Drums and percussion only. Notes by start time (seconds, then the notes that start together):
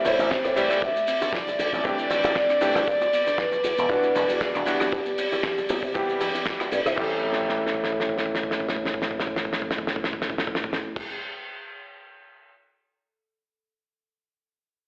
0.05 open hi-hat, high conga, shaker
0.19 shaker
0.31 kick, snare, high bongo, shaker
0.44 cross-stick, shaker
0.57 open hi-hat, shaker
0.71 cross-stick, shaker
0.82 kick, high bongo, shaker
0.96 shaker
1.08 open hi-hat, shaker
1.21 high bongo, high conga, shaker
1.33 kick, snare, low conga, shaker
1.48 high conga, shaker
1.59 open hi-hat, shaker
1.73 kick, high bongo, shaker
1.85 kick, shaker
1.98 shaker
2.10 open hi-hat, high bongo, high conga, low conga, shaker
2.24 shaker
2.35 kick, snare, shaker
2.50 cross-stick, shaker
2.61 open hi-hat, high bongo, high conga, shaker
2.75 cross-stick, shaker
2.88 kick, shaker
3.01 high bongo, shaker
3.13 open hi-hat, shaker
3.27 high conga, shaker
3.38 kick, snare, low conga, shaker
3.52 high bongo, high conga, shaker
3.64 open hi-hat, shaker
3.78 shaker
3.89 kick, high bongo, shaker
4.03 shaker
4.15 open hi-hat, high conga, shaker
4.29 shaker
4.41 kick, snare, high bongo, shaker
4.55 cross-stick, shaker
4.66 open hi-hat, shaker
4.80 cross-stick, high bongo, shaker
4.92 kick, shaker
5.05 shaker
5.18 open hi-hat, shaker
5.32 high bongo, high conga, shaker
5.43 kick, snare, low conga, shaker
5.58 high conga, shaker
5.69 open hi-hat, high bongo, shaker
5.83 kick, shaker
5.95 kick, shaker
6.09 shaker
6.20 open hi-hat, high bongo, high conga, low conga, shaker
6.35 shaker
6.46 kick, snare, shaker
6.60 cross-stick, high bongo, shaker
6.71 open hi-hat, high conga, shaker
6.86 cross-stick, shaker
6.98 kick, crash
7.23 floor tom
7.33 snare
7.41 floor tom
7.49 snare
7.58 floor tom
7.67 snare
7.74 floor tom
7.84 snare
7.92 floor tom
8.00 snare
8.09 floor tom
8.18 snare
8.26 floor tom
8.35 snare
8.43 floor tom
8.51 snare
8.60 floor tom
8.69 snare
8.76 floor tom
8.85 snare
8.94 floor tom
9.02 snare
9.11 floor tom
9.20 snare
9.27 floor tom
9.36 snare
9.45 floor tom
9.53 snare
9.62 floor tom
9.71 snare
9.78 floor tom
9.87 snare
9.96 floor tom
10.04 snare
10.13 floor tom
10.22 snare
10.30 floor tom
10.38 snare
10.47 floor tom
10.55 snare
10.64 floor tom
10.73 snare
10.96 kick, crash